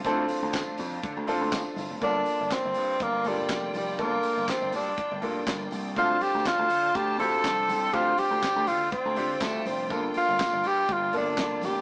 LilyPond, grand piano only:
\new Staff \with { instrumentName = "Grand piano" } { \time 4/4 \key g \minor \tempo 4 = 122 <c' d' e' f' a'>4. r4 <c' d' f' a'>4~ <c' d' f' a'>16 r16 | <bes d' f' a'>4. r4 <bes d' f' a'>4~ <bes d' f' a'>16 r16 | <bes d' f' a'>4. r4 <bes d' f' a'>4~ <bes d' f' a'>16 r16 | <c' d' f' a'>4. r4 <c' d' f' g'>4~ <c' d' f' g'>16 r16 |
<c' d' f' g'>4. r4 <c' d' f' g'>4~ <c' d' f' g'>16 r16 | <bes d' f' a'>4. r4 <bes d' f' a'>4~ <bes d' f' a'>16 r16 | }